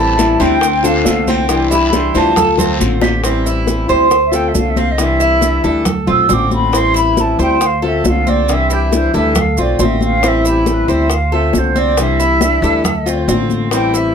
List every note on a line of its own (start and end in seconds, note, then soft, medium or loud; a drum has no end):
0.00 0.34 A1 medium
0.00 0.17 E3 medium
0.00 0.17 G3 medium
0.00 0.18 C4 medium
0.00 0.18 E4 medium
0.00 0.39 E4 medium
0.00 0.40 E4 medium
0.00 0.42 A5 loud
0.18 0.39 E3 medium
0.18 0.39 G3 medium
0.18 0.39 C4 medium
0.18 0.38 E4 medium
0.18 high bongo soft
0.18 high conga medium
0.18 short guiro medium
0.18 maracas medium
0.40 1.02 D2 medium
0.40 0.60 G3 medium
0.40 0.83 C4 medium
0.40 0.60 C4 medium
0.40 0.82 D4 medium
0.40 0.61 E4 medium
0.40 0.86 G5 loud
0.40 high bongo soft
0.40 high conga soft
0.40 short guiro medium
0.40 maracas soft
0.61 muted steel-string acoustic guitar stroke medium
0.61 high bongo medium
0.61 high conga soft
0.61 long guiro medium
0.61 maracas medium
0.83 1.06 A3 medium
0.83 1.05 C4 medium
0.83 1.29 D4 medium
0.83 1.05 F4 medium
0.83 1.27 A4 medium
0.83 1.30 F5 medium
0.83 high bongo soft
0.83 high conga soft
0.83 maracas medium
1.05 2.09 C2 medium
1.05 1.49 D3 soft
1.05 1.49 A3 medium
1.05 1.49 C4 medium
1.05 1.49 F4 medium
1.05 high bongo soft
1.05 low bongo medium
1.05 high conga medium
1.05 short guiro medium
1.05 maracas medium
1.27 1.70 C4 medium
1.27 1.72 E4 medium
1.27 1.71 G5 medium
1.27 high conga medium
1.27 short guiro medium
1.27 maracas soft
1.49 1.92 C3 medium
1.49 1.91 E3 medium
1.49 1.92 G3 medium
1.49 1.92 D4 medium
1.49 1.93 E4 medium
1.49 high bongo medium
1.49 high conga soft
1.49 long guiro medium
1.49 maracas medium
1.71 2.14 E4 medium
1.71 1.91 G4 medium
1.71 1.97 B5 medium
1.71 high bongo soft
1.71 high conga soft
1.71 maracas medium
1.93 2.14 E3 medium
1.93 2.14 G3 medium
1.93 2.14 D4 medium
1.93 2.13 E4 soft
1.93 2.15 G4 medium
1.93 2.16 C6 medium
1.93 high bongo medium
1.93 high conga medium
1.93 short guiro medium
1.93 maracas medium
2.14 2.76 D2 medium
2.14 2.36 E3 medium
2.14 2.36 G3 medium
2.14 2.36 C4 medium
2.14 2.36 D4 medium
2.14 2.36 E4 medium
2.14 2.77 F4 medium
2.14 2.77 A5 medium
2.14 high bongo soft
2.14 high conga soft
2.14 short guiro medium
2.14 maracas soft
2.36 2.58 A4 medium
2.36 muted steel-string acoustic guitar stroke medium
2.36 high bongo medium
2.36 high conga soft
2.36 low conga medium
2.36 long guiro medium
2.36 maracas medium
2.57 2.79 A3 medium
2.57 2.79 C4 medium
2.57 3.01 C4 medium
2.57 2.79 F4 medium
2.57 high bongo medium
2.57 high conga soft
2.57 low conga medium
2.57 maracas medium
2.79 3.83 A1 medium
2.79 3.23 D3 soft
2.79 3.23 A3 medium
2.79 3.23 C4 soft
2.79 3.24 F4 medium
2.79 high conga medium
2.79 short guiro medium
2.79 maracas medium
3.01 3.23 G4 medium
3.01 low bongo loud
3.01 high conga medium
3.01 short guiro medium
3.01 maracas soft
3.24 3.66 E3 medium
3.24 3.67 G3 medium
3.24 3.45 C4 medium
3.24 3.67 C4 medium
3.24 3.68 E4 medium
3.24 high bongo medium
3.24 high conga soft
3.24 maracas medium
3.46 3.89 E4 medium
3.46 high bongo soft
3.46 high conga soft
3.46 maracas medium
3.67 3.89 E3 medium
3.67 3.89 G3 medium
3.67 3.88 C4 medium
3.67 3.87 E4 medium
3.67 high bongo medium
3.67 high conga medium
3.67 maracas medium
3.88 4.51 D2 medium
3.88 4.10 G3 medium
3.88 4.10 C4 medium
3.88 4.10 E4 medium
3.88 4.32 C5 medium
3.88 high bongo soft
3.88 high conga soft
3.88 maracas soft
4.10 muted steel-string acoustic guitar stroke medium
4.10 high bongo medium
4.10 high conga soft
4.10 maracas medium
4.26 4.36 E5 medium
4.31 4.53 A3 medium
4.31 4.53 C4 medium
4.31 4.53 F4 medium
4.31 4.76 A4 medium
4.31 4.49 G5 medium
4.31 high bongo soft
4.31 high conga soft
4.31 maracas medium
4.48 4.60 E5 medium
4.53 5.58 C2 medium
4.53 4.97 D3 soft
4.53 4.98 A3 soft
4.53 4.98 C4 medium
4.53 4.98 F4 soft
4.53 high bongo soft
4.53 low bongo medium
4.53 high conga medium
4.53 maracas medium
4.58 4.71 F5 medium
4.69 4.80 E5 medium
4.76 5.19 C4 medium
4.76 4.92 F5 loud
4.76 high conga medium
4.76 maracas soft
4.91 5.03 D#5 medium
4.98 5.41 C3 medium
4.98 5.40 E3 medium
4.98 5.41 G3 medium
4.98 5.41 D4 medium
4.98 5.42 E4 medium
4.98 high bongo medium
4.98 high conga soft
4.98 maracas medium
5.02 5.66 E5 loud
5.20 5.63 E4 medium
5.20 high bongo soft
5.20 high conga soft
5.20 maracas medium
5.41 5.63 E3 medium
5.41 5.63 G3 medium
5.41 5.63 D4 medium
5.41 5.63 E4 medium
5.41 high bongo medium
5.41 high conga medium
5.41 maracas medium
5.64 6.05 D2 medium
5.64 5.85 E3 medium
5.64 5.86 G3 medium
5.64 5.85 D4 medium
5.64 5.85 E4 medium
5.64 6.07 A4 medium
5.64 high bongo soft
5.64 high conga soft
5.64 maracas soft
5.85 muted steel-string acoustic guitar stroke medium
5.85 high bongo medium
5.85 high conga soft
5.85 low conga medium
5.85 maracas medium
6.07 6.29 B1 medium
6.07 6.29 A3 medium
6.07 6.29 C4 medium
6.07 6.28 F4 medium
6.07 6.29 F4 medium
6.07 6.34 E6 medium
6.07 high bongo soft
6.07 high conga soft
6.07 low conga medium
6.29 7.33 A1 medium
6.29 6.71 D3 soft
6.29 6.72 A3 medium
6.29 6.71 C4 medium
6.29 6.72 C4 medium
6.29 6.73 F4 medium
6.29 6.53 D6 loud
6.29 high bongo soft
6.29 low bongo medium
6.29 high conga medium
6.29 maracas medium
6.51 6.78 B5 loud
6.51 high conga medium
6.51 maracas soft
6.72 7.16 E3 medium
6.72 7.16 G3 medium
6.72 6.94 C4 medium
6.72 7.16 C4 medium
6.72 7.17 E4 medium
6.72 high bongo medium
6.72 high conga soft
6.72 maracas medium
6.76 6.96 C6 loud
6.94 7.37 E4 medium
6.94 7.22 B5 loud
6.94 high bongo soft
6.94 high conga soft
6.94 maracas medium
7.17 7.38 E3 medium
7.17 7.39 G3 medium
7.17 7.39 C4 medium
7.17 7.38 E4 medium
7.17 7.41 A5 medium
7.17 high bongo soft
7.17 high conga medium
7.17 maracas medium
7.39 8.00 D2 medium
7.39 7.61 G3 medium
7.39 7.61 C4 medium
7.39 7.60 E4 medium
7.39 7.82 C5 medium
7.39 7.67 G5 loud
7.39 high bongo soft
7.39 high conga soft
7.39 maracas soft
7.61 muted steel-string acoustic guitar stroke medium
7.61 high bongo medium
7.61 high conga soft
7.61 maracas medium
7.65 7.85 F5 medium
7.82 8.04 A3 medium
7.82 8.04 C4 medium
7.82 8.04 F4 medium
7.82 8.25 A4 medium
7.82 8.11 E5 medium
7.82 high bongo soft
7.82 high conga soft
8.04 9.07 C2 medium
8.04 8.48 D3 soft
8.04 8.48 A3 soft
8.04 8.48 C4 soft
8.04 8.49 F4 medium
8.04 high bongo soft
8.04 low bongo medium
8.04 high conga medium
8.04 maracas medium
8.09 8.30 F5 medium
8.27 8.69 C4 medium
8.27 8.54 D5 medium
8.27 high conga medium
8.27 maracas soft
8.48 8.91 C3 medium
8.48 8.90 E3 medium
8.48 8.91 G3 medium
8.48 8.91 D4 medium
8.48 8.92 E4 medium
8.48 high bongo medium
8.48 high conga soft
8.48 maracas medium
8.53 8.74 E5 loud
8.70 9.12 E4 medium
8.70 8.98 G4 medium
8.70 high bongo soft
8.70 high conga soft
8.70 maracas medium
8.91 9.13 E3 medium
8.91 9.13 G3 medium
8.91 9.12 D4 medium
8.91 9.12 E4 medium
8.91 high bongo medium
8.91 high conga medium
8.91 maracas medium
8.96 9.16 C5 medium
9.13 9.55 D2 medium
9.13 9.36 E3 medium
9.13 9.35 G3 medium
9.13 9.35 D4 medium
9.13 9.35 E4 medium
9.13 9.56 A4 medium
9.13 9.42 E5 medium
9.13 high bongo soft
9.13 high conga soft
9.13 maracas soft
9.35 muted steel-string acoustic guitar stroke medium
9.35 high bongo medium
9.35 high conga soft
9.35 low conga medium
9.35 maracas medium
9.40 9.62 F5 medium
9.57 9.78 B1 medium
9.57 9.79 A3 medium
9.57 9.79 C4 medium
9.57 9.79 F4 medium
9.57 9.85 D5 medium
9.57 high bongo soft
9.57 high conga soft
9.57 maracas medium
9.79 10.82 A1 medium
9.79 10.21 D3 soft
9.79 10.22 A3 soft
9.79 10.22 C4 medium
9.79 10.22 C4 soft
9.79 10.23 F4 medium
9.79 high bongo soft
9.79 low bongo medium
9.79 high conga medium
9.79 maracas medium
9.84 10.03 E5 medium
10.01 10.29 F5 loud
10.01 high conga medium
10.01 maracas soft
10.22 10.65 E3 medium
10.22 10.66 G3 medium
10.22 10.66 C4 medium
10.22 10.44 C4 medium
10.22 10.66 E4 medium
10.22 high bongo medium
10.22 high conga soft
10.22 maracas medium
10.27 10.47 E5 medium
10.45 10.87 E4 medium
10.45 high bongo soft
10.45 high conga soft
10.45 maracas medium
10.49 10.74 G4 soft
10.66 10.87 E3 medium
10.66 10.88 G3 soft
10.66 10.88 C4 medium
10.66 10.87 E4 medium
10.66 high bongo medium
10.66 high conga medium
10.66 maracas medium
10.72 10.91 B4 medium
10.88 11.50 D2 medium
10.88 11.10 G3 medium
10.88 11.10 C4 medium
10.88 11.09 E4 medium
10.88 11.31 C5 medium
10.88 11.16 E5 loud
10.88 high bongo soft
10.88 high conga soft
10.88 maracas soft
11.10 muted steel-string acoustic guitar stroke medium
11.10 high bongo medium
11.10 high conga soft
11.10 maracas medium
11.14 11.36 F5 medium
11.32 11.54 A3 medium
11.32 11.54 C4 medium
11.32 11.53 F4 medium
11.32 11.74 A4 medium
11.32 11.59 E5 medium
11.32 high bongo soft
11.32 high conga soft
11.53 12.57 C2 medium
11.53 11.97 D3 soft
11.53 11.97 A3 soft
11.53 11.98 C4 medium
11.53 11.98 F4 medium
11.53 high bongo soft
11.53 low bongo medium
11.53 high conga medium
11.53 maracas medium
11.58 11.79 C5 medium
11.76 12.18 C4 medium
11.76 11.98 D5 medium
11.76 high conga medium
11.76 maracas soft
11.97 12.41 C3 medium
11.97 12.40 E3 medium
11.97 12.41 G3 medium
11.97 12.41 D4 medium
11.97 12.41 E4 medium
11.97 13.26 E5 loud
11.97 high bongo medium
11.97 high conga soft
11.97 maracas medium
12.19 12.62 E4 medium
12.19 high bongo soft
12.19 high conga soft
12.19 maracas medium
12.41 12.62 E3 medium
12.41 12.62 G3 medium
12.41 12.62 D4 medium
12.41 12.61 E4 medium
12.41 high bongo medium
12.41 high conga loud
12.41 maracas medium
12.62 13.24 D2 medium
12.62 12.84 E3 medium
12.62 12.84 G3 medium
12.62 12.84 D4 medium
12.62 12.84 E4 medium
12.62 13.06 A4 medium
12.62 high bongo soft
12.62 high conga soft
12.62 maracas soft
12.84 high bongo medium
12.84 high conga soft
12.84 low conga medium
12.84 maracas medium
13.06 13.27 A3 medium
13.06 13.28 C4 medium
13.06 13.27 F4 medium
13.06 13.28 F4 medium
13.06 high bongo soft
13.06 high conga soft
13.06 maracas medium
13.28 14.15 A1 medium
13.28 13.71 D3 soft
13.28 13.71 A3 soft
13.28 13.71 C4 medium
13.28 13.71 C4 soft
13.28 13.72 F4 soft
13.28 high bongo soft
13.28 low bongo medium
13.28 high conga medium
13.28 maracas medium
13.50 high conga medium
13.50 maracas soft
13.71 14.14 E3 medium
13.71 14.15 G3 medium
13.71 14.15 C4 medium
13.71 13.93 C4 medium
13.71 14.15 E4 medium
13.71 high bongo medium
13.71 high conga soft
13.71 maracas medium
13.75 13.97 G5 medium
13.93 14.15 E4 medium
13.93 14.15 E5 medium
13.93 high bongo soft
13.93 high conga soft
13.93 maracas medium